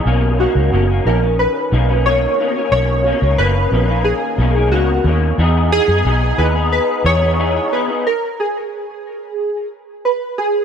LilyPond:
<<
  \new Staff \with { instrumentName = "Synth keys" } { \time 4/4 \key b \major \tempo 4 = 90 r8 fis'4 ais'8 b'4 cis''4 | cis''4 b'4 gis'4 fis'8. r16 | r8 gis'4 b'8 b'8 cis''4 b'8 | ais'8 gis'2 r8 b'8 gis'8 | }
  \new Staff \with { instrumentName = "Clean electric guitar" } { \time 4/4 \key b \major <b, dis ais cis'>8 <b, dis ais cis'>16 <dis ais cis'>16 <b, dis ais cis'>16 <dis ais cis'>16 <b, dis ais cis'>16 <dis cis'>8. <b, dis ais cis'>16 <dis ais cis'>16 <b, dis ais cis'>8 <b, dis ais cis'>16 <dis ais cis'>16 | <b, dis ais cis'>8 <b, dis ais cis'>16 <dis ais cis'>16 <b, dis ais cis'>16 <dis ais cis'>16 <b, dis ais cis'>16 <dis ais cis'>8. <b, dis ais cis'>16 <dis ais cis'>16 <b, dis ais cis'>8 <b, dis ais cis'>8 | <e b dis' gis'>8 <e b dis' gis'>16 <b dis' gis'>16 <e b dis' gis'>16 <b dis' gis'>16 <e b dis' gis'>16 <b dis' gis'>8. <e b dis' gis'>16 <b dis' gis'>16 <e b dis' gis'>8 <e b dis' gis'>16 <b dis' gis'>16 | r1 | }
  \new Staff \with { instrumentName = "Fingered electric bass" } { \clef bass \time 4/4 \key b \major b,,8. cis,16 fis,,8 ais,,8. r16 b,,4 r8 | b,,8. cis,16 fis,,8 ais,,8. r16 b,,8 cis,8 dis,8 | e,8. fis,16 b,,8 dis,8. r16 e,4 r8 | r1 | }
>>